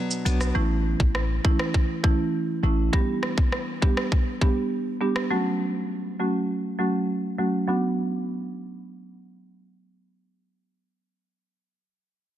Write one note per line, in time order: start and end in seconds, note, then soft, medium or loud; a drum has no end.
0.00 0.55 B2 medium
0.00 0.24 F#3 medium
0.00 0.25 B3 medium
0.00 0.26 D4 medium
0.11 shaker medium
0.25 0.52 B1 medium
0.25 0.53 F#3 medium
0.25 0.61 F#3 medium
0.25 0.53 B3 medium
0.25 0.62 B3 medium
0.25 0.53 D4 medium
0.25 0.62 D4 medium
0.25 0.53 F#4 medium
0.25 closed hi-hat medium
0.25 shaker medium
0.41 cross-stick medium
0.41 shaker medium
0.55 0.95 A1 loud
0.55 1.10 E3 loud
0.55 1.10 A3 medium
0.55 1.10 C#4 medium
0.55 1.10 E4 loud
1.00 1.39 A1 loud
1.00 kick loud
1.15 cross-stick medium
1.44 1.61 E3 medium
1.44 1.61 A3 medium
1.44 1.61 C#4 medium
1.44 1.61 E4 medium
1.44 kick loud
1.59 cross-stick loud
1.74 kick medium
2.04 2.21 E3 medium
2.04 2.21 A3 medium
2.04 2.21 C#4 medium
2.04 2.21 E4 medium
2.04 kick medium
2.63 2.90 A1 medium
2.63 2.91 E3 medium
2.63 2.91 A3 medium
2.63 2.91 C#4 medium
2.63 2.91 E4 medium
2.93 3.48 G3 medium
2.93 3.48 B3 medium
2.93 3.48 D4 medium
2.93 3.48 G4 loud
2.93 kick loud
3.23 cross-stick medium
3.38 kick loud
3.52 cross-stick medium
3.82 3.99 G3 medium
3.82 3.99 B3 medium
3.82 3.99 D4 medium
3.82 3.99 G4 medium
3.82 kick medium
3.97 cross-stick loud
4.12 kick medium
4.41 4.58 G3 medium
4.41 4.58 B3 medium
4.41 4.58 D4 medium
4.41 4.58 G4 medium
4.41 kick medium
5.01 5.28 G3 medium
5.01 5.28 B3 medium
5.01 5.28 D4 medium
5.01 5.28 G4 medium
5.16 cross-stick medium
5.31 5.85 F#3 medium
5.31 5.85 A3 medium
5.31 5.85 C#4 medium
5.31 5.85 F#4 loud
6.20 6.36 F#3 medium
6.20 6.36 A3 medium
6.20 6.36 C#4 medium
6.20 6.37 F#4 medium
6.79 6.96 F#3 medium
6.79 6.96 A3 medium
6.79 6.96 C#4 medium
6.79 6.96 F#4 medium
7.38 7.66 F#3 medium
7.38 7.66 A3 medium
7.38 7.66 C#4 medium
7.38 7.66 F#4 medium
7.68 11.52 F#3 medium
7.68 11.52 B3 medium
7.68 11.52 D4 medium
7.68 11.52 F#4 medium